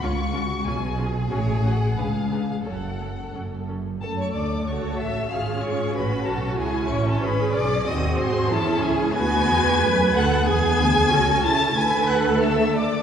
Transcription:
<<
  \new Staff \with { instrumentName = "Violin section" } { \time 2/4 \key fis \minor \tempo 4 = 92 cis'''4 gis''8 r8 | cis''8 fis''8 eis''8. eis''16 | fis''4 r4 | a''16 cis'''16 d'''8 cis'''8 e'''8 |
eis'''8 cis'''8 b''8 a''8 | gis''8 cis'''16 a''16 b''8 d'''8 | dis'''8 bis''8 a''8 gis''8 | \key b \dorian gis'''4. fis'''8 |
gis'''4. a'''8 | gis'''8 fis'''8 e'''8 d'''8 | }
  \new Staff \with { instrumentName = "Violin section" } { \time 2/4 \key fis \minor eis'8 fis'8 gis'4~ | gis'2 | a'4. r8 | a'16 cis''16 d''8 cis''8 e''8 |
eis''8 cis''8 b'8 a'8 | gis'8 cis''16 a'16 b'8 d''8 | dis''8 bis'8 a'8 gis'8 | \key b \dorian gis''4. fis''8 |
gis''4. a''8 | gis''8 fis''8 e''8 d''8 | }
  \new Staff \with { instrumentName = "Cello section" } { \time 2/4 \key fis \minor cis,4 b,4 | a,4 cis,4 | fis,4 fis,4 | r4 a'4 |
gis'4 fis'4 | e'4 gis'4 | fis'4 e'4 | \key b \dorian fis'4 b'8 a'8 |
gis'4 fis'8 e'8 | b'4 a'4 | }
  \new Staff \with { instrumentName = "Viola section" } { \time 2/4 \key fis \minor << { eis'8 eis'8 eis'8 eis'8 | fis'8 fis'8 b'8 b'8 | a'8 a'8 a'8 a'8 | a'4 fis'4 |
eis'4 fis'4~ | fis'4 gis'4 | gis'2 | \key b \dorian b'2 |
gis'4 a'4 | a'2 | } \\ { cis'8 cis'8 cis'8 cis'8 | cis'8 cis'8 d'8 d'8 | cis'8 cis'8 cis'8 cis'8 | a2 |
cis'2 | cis'2 | bis4 cis'4 | b4 a4 |
b4 cis'4 | a2 | } >> }
  \new Staff \with { instrumentName = "Double bass section" } { \clef bass \time 2/4 \key fis \minor cis,4 b,,4 | a,,4 cis,4 | fis,,4 fis,,4 | fis,8 d,8 cis,8 a,,8 |
gis,,8 gis,8 a,,8 b,,8 | cis,8 a,,8 gis,,8 b,,8 | dis,8 gis,8 e,8 cis,8 | \key b \dorian d,8 e,8 fis,8 d,8 |
e,8 d,8 cis,8 cis8 | d,2 | }
>>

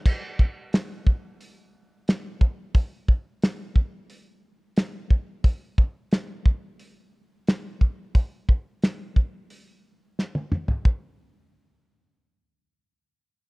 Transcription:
\new DrumStaff \with { instrumentName = "Drums" } \drummode { \time 4/4 \tempo 4 = 89 <cymc bd>8 bd8 <hho sn>8 bd8 hho4 <hho sn>8 bd8 | <hho bd>8 bd8 <hho sn>8 bd8 hho4 <hho sn>8 bd8 | <hho bd>8 bd8 <hho sn>8 bd8 hho4 <hho sn>8 bd8 | <hho bd>8 bd8 <hho sn>8 bd8 hho4 sn16 tommh16 toml16 tomfh16 |
bd4 r4 r4 r4 | }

